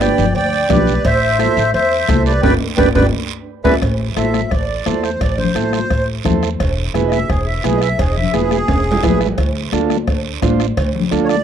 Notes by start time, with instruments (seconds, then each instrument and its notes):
0.00 transistor combo organ D4 G4 B4, clarinet D5, accordion D5 G5, bombo rim, cowbell, high conga, short guiro
0.18 upright bass G1, high conga, low conga, short guiro
0.35 upright bass D2, clarinet D5, accordion D5 G5, cowbell, long guiro
0.69 upright bass B1, transistor combo organ D4 G4 D5, clarinet G4, accordion B4 D5, bombo low, bombo rim, cowbell, high conga, low conga, short guiro
0.87 short guiro
1.05 upright bass A1, clarinet C5, accordion C5 E5, bombo low, cowbell, long guiro
1.39 transistor combo organ E4 A4 C5, bombo rim, cowbell, high conga, short guiro
1.57 upright bass A1, short guiro
1.74 upright bass E2, clarinet C5, accordion C5 E5, cowbell, long guiro
2.08 upright bass C2, transistor combo organ E4 A4 C5, bombo low, bombo rim, cowbell, high conga, short guiro
2.26 clarinet G4, accordion B4 D5, short guiro
2.42 upright bass G1, transistor combo organ D4 G4 B4, accordion B4 D5 G5, clarinet B4, bombo low, high conga, high timbale, long guiro
2.77 upright bass G1, transistor combo organ D4 G4 B4, accordion B4 D5 G5, clarinet B4, bombo low, high conga, high timbale, long guiro
2.95 upright bass G1, transistor combo organ D4 G4 B4, accordion B4 D5 G5, clarinet B4, bombo low, high conga, high timbale, long guiro
3.64 upright bass E2, transistor combo organ E4 G#4 B4, accordion B4 D5 E5, clarinet B4, bombo low, high conga, high timbale, long guiro
3.82 upright bass A1, bombo low, bombo rim, cowbell, long guiro
4.16 upright bass A1, transistor combo organ E4 A4 C5, accordion E5, bombo rim, cowbell, high conga, short guiro
4.34 bombo rim, high conga, short guiro
4.51 upright bass A1, accordion D5, bombo low, bombo rim, cowbell, long guiro
4.86 upright bass E2, transistor combo organ E4 A4 C5, bombo rim, cowbell, high conga, short guiro
5.03 accordion C5, bombo rim, short guiro
5.21 upright bass A1, accordion D5, bombo low, bombo rim, cowbell, long guiro
5.38 accordion C5, low conga
5.55 upright bass A1, transistor combo organ E4 A4 C5, bombo rim, cowbell, high conga, short guiro
5.73 accordion C5, bombo rim, high conga, short guiro
5.90 upright bass A1, bombo low, bombo rim, cowbell, long guiro
6.25 upright bass E2, transistor combo organ E4 A4 C5, bombo low, bombo rim, cowbell, high conga, low conga, short guiro
6.43 bombo rim, short guiro
6.60 upright bass E1, bombo low, bombo rim, cowbell, long guiro
6.94 upright bass E1, transistor combo organ E4 G#4 B4, bombo rim, cowbell, high conga, short guiro
7.08 accordion D#5
7.12 accordion E5, bombo rim, high conga, short guiro
7.29 upright bass E1, accordion G#4, bombo low, bombo rim, cowbell, long guiro
7.47 accordion E5
7.64 upright bass B1, transistor combo organ E4 G#4 B4, accordion G#4, bombo rim, cowbell, high conga, short guiro
7.77 accordion D#5
7.81 accordion E5, bombo rim, short guiro
7.99 upright bass E1, accordion G#4, bombo low, bombo rim, cowbell, long guiro
8.12 accordion D#5
8.16 accordion E5, low conga
8.34 upright bass E1, transistor combo organ E4 G#4 B4, accordion G#4, bombo rim, cowbell, high conga, short guiro
8.51 accordion G#4, bombo rim, high conga, short guiro
8.68 upright bass E1, bombo low, bombo rim, cowbell, high timbale, long guiro
8.92 low timbale
9.03 upright bass A1, transistor combo organ E4 G#4 B4, bombo low, bombo rim, cowbell, high conga, low conga, low timbale, short guiro
9.15 low timbale
9.21 bombo rim, short guiro
9.26 low timbale
9.38 upright bass D2, bombo low, bombo rim, cowbell, long guiro
9.72 upright bass D2, transistor combo organ D4 F4 A4, bombo rim, cowbell, high conga, short guiro
9.90 bombo rim, high conga, short guiro
10.07 upright bass D2, bombo low, bombo rim, cowbell, long guiro
10.42 upright bass A1, transistor combo organ D4 F4 C5, bombo low, bombo rim, cowbell, high conga, low timbale, short guiro
10.60 bombo rim, short guiro
10.77 upright bass D2, bombo low, bombo rim, cowbell, long guiro
10.95 low conga
11.11 upright bass D2, transistor combo organ D4 F4 A4, bombo rim, cowbell, high conga, short guiro
11.25 accordion C#5
11.29 accordion D5, bombo rim, high conga, short guiro